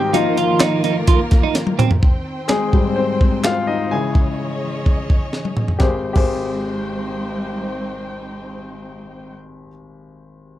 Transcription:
Already playing: G#2 D#3 G3 C4 D#4 F4 G4 C5 D#5 F5 G5
0.13 D#3 F3 A#3 D#4 F4 A#4 F5, closed hi-hat
0.37 F4, closed hi-hat
0.60 D#4, snare, clap, closed hi-hat
0.84 D#4, closed hi-hat
1.07 F4, kick, closed hi-hat
1.31 kick, snare, closed hi-hat
1.44 D#4
1.55 snare, closed hi-hat
1.67 high tom
1.79 C4, closed hi-hat, mid tom
1.91 floor tom
2.02 D#3 C4 C5 G5, kick
2.48 G#3 G#4, snare, clap
2.73 G#2 G3 C4, kick
2.96 C4 C5
3.21 kick
3.44 F4 F5, snare, clap
3.67 D#4 D#5
3.91 C#3 E3 G#3 C#4 E4 G#4 C#5 D#5 G#5
4.15 kick
4.86 kick
5.10 kick
5.33 snare
5.45 high tom
5.57 mid tom
5.68 floor tom
5.79 G#1 G#3 C4 D#4 G4 G#4 C5 G5, kick, snare
5.83 C5
6.13 G#1 G4 G#4, kick, crash
6.18 C5

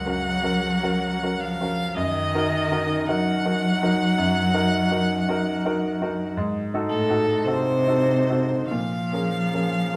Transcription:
Already playing: C#2 F#3 C#4 F#4 A#4 F#5
0.06 C#4 F#4 A#4
0.43 C#4 F#4 A#4
0.83 C#4 F#4 A#4
1.23 C#4 F#4 A#4
1.40 F3 F5
1.61 C#4 F#4 A#4
1.96 F#2 D#3 D#5
2.35 D#4 F#4 A#4
2.72 D#4 F#4 A#4
3.07 F#3 D#4 F#4 A#4 F#5
3.45 D#4 F#4 A#4
3.83 D#4 F#4 A#4
4.18 F#2
4.54 D#4 F#4 A#4
4.91 D#4 F#4 A#4
5.29 D#4 F#4 A#4
5.65 D#4 F#4 A#4
6.02 D#4 F#4 A#4
6.37 G#2
6.74 D#4 F#4 A4
6.89 A2 A4
7.09 D#4 F#4 A4
7.45 C3 D#4 F#4 A4 C5
7.87 D#4 F#4 A4
8.29 D#4 F#4 A4
8.67 A#2 F3 F5
9.12 C#4 G#4 A#4
9.53 C#4 G#4 A#4

